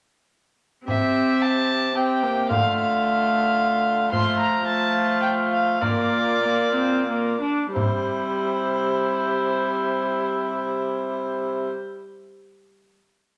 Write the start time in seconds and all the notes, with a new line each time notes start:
0.86 C3 C4 G4 E5, frame drum
1.42 A5
1.95 C4 G4 G5
2.23 A#3
2.49 D3 A3 F4 F5, frame drum
2.78 F5
4.11 F3 A3 F4 C6, frame drum
4.40 A#5
4.66 A3 F4 A5
5.21 G5
5.52 F5
5.81 A#2 A#3 F4 D5, frame drum
6.43 A#3
6.75 C4
7.09 A#3
7.41 D4
7.74 C3 G3 E4 C5, frame drum